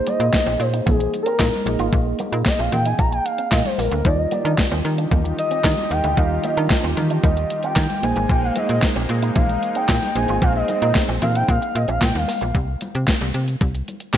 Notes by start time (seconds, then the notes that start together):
Already playing: A#3 D#4 G#4 C5
0.07 A#3 D#5, closed hi-hat, muted conga
0.20 A#2 D#4, closed hi-hat
0.33 kick, snare, clap, closed hi-hat, high conga
0.46 A#1 C4, closed hi-hat
0.59 A#2 C5, muted clean electric guitar stroke, closed hi-hat
0.73 D#4, closed hi-hat
0.86 A#1 A#3 G#4, kick, closed hi-hat, muted conga, low conga
0.99 muted clean electric guitar stroke, closed hi-hat
1.14 closed hi-hat, muted conga
1.23 C4 A#4, closed hi-hat
1.39 A#2 D#4, kick, snare, clap, closed hi-hat, high conga
1.53 closed hi-hat, high conga
1.66 A#1 A#3 D#4 G#4 D#5, muted clean electric guitar stroke, closed hi-hat
1.79 G#1 F4, closed hi-hat
1.93 A#1, kick, closed hi-hat
2.06 muted clean electric guitar stroke
2.19 A#3, closed hi-hat, muted conga
2.32 A#2 D#4, closed hi-hat
2.46 D#5, kick, snare, clap, closed hi-hat, high conga
2.59 A#1 C4 F5, closed hi-hat
2.72 A#2 G5, muted clean electric guitar stroke, closed hi-hat, low conga
2.85 D#4 G#5, closed hi-hat
2.99 A#1 A#3 A#5, kick, closed hi-hat, muted conga
3.12 G5, muted clean electric guitar stroke, closed hi-hat
3.25 F5, closed hi-hat
3.38 C4, closed hi-hat
3.51 A#2 D#5, muted clean electric guitar stroke, kick, snare, clap, closed hi-hat, high conga
3.65 C5, closed hi-hat, high conga
3.78 A#1 A#3 A#4, open hi-hat
3.92 D2 A#3, closed hi-hat
4.05 D#2 D#3 G3 D#4 F4 G4 D5 D#5, kick, closed hi-hat
4.18 D#5, muted clean electric guitar stroke
4.31 A#3 D5, closed hi-hat, muted conga
4.45 D#3 D4, closed hi-hat
4.58 kick, snare, clap, closed hi-hat, high conga
4.71 D#2 C4, closed hi-hat
4.85 D#3, muted clean electric guitar stroke, closed hi-hat
4.98 D4, closed hi-hat
5.11 D#2 A#3, kick, closed hi-hat, muted conga, low conga
5.24 muted clean electric guitar stroke, closed hi-hat
5.39 D#5, closed hi-hat
5.51 C4, closed hi-hat
5.64 D#3 D4, kick, snare, clap, closed hi-hat, high conga
5.77 closed hi-hat, high conga
5.91 D#2 G5, muted clean electric guitar stroke, closed hi-hat
6.04 D2 D#4, closed hi-hat
6.17 D#2 G3 D#4 F4 D#5 F5, kick, closed hi-hat
6.31 muted clean electric guitar stroke
6.44 A#3 D#5, closed hi-hat, muted conga
6.57 D#3 D4, closed hi-hat
6.70 D#5, kick, snare, clap, closed hi-hat, high conga
6.84 D#2 C4, closed hi-hat
6.97 D#3, muted clean electric guitar stroke, closed hi-hat, low conga
7.10 D4, closed hi-hat
7.23 D#2 A#3 D#5, kick, closed hi-hat, muted conga
7.37 muted clean electric guitar stroke, closed hi-hat
7.50 closed hi-hat, muted conga
7.63 C4 G5, closed hi-hat
7.76 D#3, muted clean electric guitar stroke, kick, snare, clap, closed hi-hat, high conga
7.90 closed hi-hat, high conga
8.02 A#1 G#3 A#3 D#4 G#4 C5 G#5, closed hi-hat
8.16 G#1 A#3, closed hi-hat
8.29 A#1 G5, kick, closed hi-hat
8.43 F5, muted clean electric guitar stroke
8.56 A#3 D#5, closed hi-hat, muted conga
8.69 A#2 D#4, closed hi-hat
8.82 kick, snare, clap, closed hi-hat, high conga
8.96 A#1 C4, closed hi-hat
9.09 A#2, muted clean electric guitar stroke, closed hi-hat
9.22 D#4, closed hi-hat
9.35 A#1 A#3 F5, kick, closed hi-hat, muted conga, low conga
9.49 muted clean electric guitar stroke, closed hi-hat
9.63 closed hi-hat
9.75 C4 G5, closed hi-hat
9.89 A#2 D#4, kick, snare, clap, closed hi-hat, high conga
10.02 closed hi-hat, high conga
10.15 A#1 A#3 C4 D4 G#4 C5 G#5, muted clean electric guitar stroke, closed hi-hat
10.22 D#4
10.28 G#1 F4, closed hi-hat
10.42 A#1 F5, kick, closed hi-hat
10.55 D#5, muted clean electric guitar stroke
10.68 A#3 D#5, closed hi-hat, muted conga
10.82 A#2 D#4, closed hi-hat
10.95 kick, snare, clap, closed hi-hat, high conga
11.08 A#1 C4, closed hi-hat
11.22 A#2 F5, muted clean electric guitar stroke, closed hi-hat, low conga
11.35 D#4 G5, closed hi-hat
11.48 A#2 A#3 F5, kick, closed hi-hat, muted conga
11.62 muted clean electric guitar stroke, closed hi-hat
11.75 A#2 D#5, closed hi-hat
11.88 A#1 C4 F5, closed hi-hat
12.01 A#2 G5, muted clean electric guitar stroke, kick, snare, clap, closed hi-hat, high conga
12.15 D#2 F5, closed hi-hat, high conga
12.28 A#3, open hi-hat
12.41 A#1 A#3, closed hi-hat
12.55 C2, kick, closed hi-hat
12.81 closed hi-hat, muted conga
12.95 C3, closed hi-hat
13.08 kick, snare, clap, closed hi-hat, high conga
13.21 C2, closed hi-hat
13.34 C3, closed hi-hat
13.48 closed hi-hat
13.61 C2, kick, closed hi-hat, muted conga
13.75 closed hi-hat
13.88 closed hi-hat, muted conga
14.00 closed hi-hat
14.14 C3, kick, clap, closed hi-hat, high conga